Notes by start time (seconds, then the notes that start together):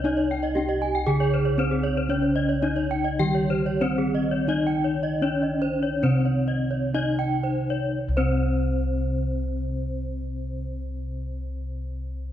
Already playing: C2
0.04 D#4 D#5
0.17 C#5
0.31 G5
0.43 D#5
0.55 C#4 G4 G5
0.69 D#5
0.82 G#5
0.95 G5
1.07 C#3 G#4 G#5
1.20 C#5
1.34 C5
1.45 C#5
1.58 C4 C#4 C5
1.71 G#4
1.83 C#5
1.97 C5
2.09 C#3 C#4 C#5
2.22 C5
2.36 D#5
2.49 C#5
2.62 C#4 D#4 D#5
2.76 C#5
2.91 G5
3.04 D#5
3.19 D#3 G3 G4 G5
3.35 C#5
3.50 C5
3.66 C#5
3.81 C4 C#4 C5
3.98 G#4
4.14 D#5
4.31 C#5
4.47 D#3 D#4 D#5
4.67 G5
4.84 C#5
5.03 D#5
5.22 C#4 C#5
5.43 D#5
5.62 C5
5.83 C#5
6.03 C3 C4 C5
6.25 C#5
6.48 D#5
6.71 C#5
6.93 C#4 D#4 D#5
7.19 G5
7.43 C5
7.70 C#5
8.09 C2
8.17 C3 C4 C5